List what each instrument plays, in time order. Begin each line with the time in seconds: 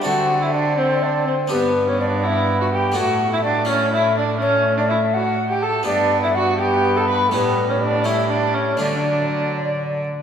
0.02 cello D3, harpsichord C4 D4 A4, trombone C4, viola F#4, recorder F#5
0.06 harpsichord D3
0.42 viola E4, recorder E5
0.53 viola D4, recorder D5
0.78 trombone C4, viola C4, recorder C5
1.02 viola D4, recorder D5 E5
1.27 viola C4, recorder C5
1.48 harpsichord G2 B3 D4 G4, cello G2, viola B3, recorder B4
1.52 trombone B3
1.88 viola C#4, recorder C#5
2.00 viola D4, recorder D5
2.23 viola E4, recorder E5 F#5
2.61 viola F#4, recorder F#5
2.73 viola G4, recorder G5
2.92 harpsichord A3 D4 E4, recorder F#5
2.96 harpsichord A2, cello A2, trombone A3, viola F#4
3.32 viola E4, recorder E5
3.43 viola D4, recorder D5
3.65 harpsichord A3 E4, trombone A3, viola C#4, recorder C#5
3.92 viola E4, recorder E5
4.17 viola D4, recorder D5
4.41 trombone A3, viola C#4, recorder C#5
4.77 viola D4, recorder D5
4.89 viola E4, recorder E5
5.13 viola F#4, recorder F#5
5.50 viola G4, recorder G5
5.61 viola A4, recorder A5
5.83 cello G2, harpsichord G2 B3 G4, trombone B3, viola D4, recorder D5
6.23 viola E4, recorder E5
6.35 viola F#4, recorder F#5
6.59 trombone B3, viola G4, recorder G5
6.97 viola A4, recorder A5
7.09 viola B4, recorder B5
7.31 cello A2, harpsichord A2 A3 E4, trombone G3, viola B3, recorder B4
7.69 viola C#4, recorder C#5
7.81 viola D4, recorder D5
8.04 trombone G3, harpsichord A3 C#4, viola E4, recorder E5
8.30 viola D4, recorder D5
8.54 viola C#4, recorder C#5
8.77 cello D3, harpsichord D3 A3 D4, trombone F#3, viola D4, recorder D5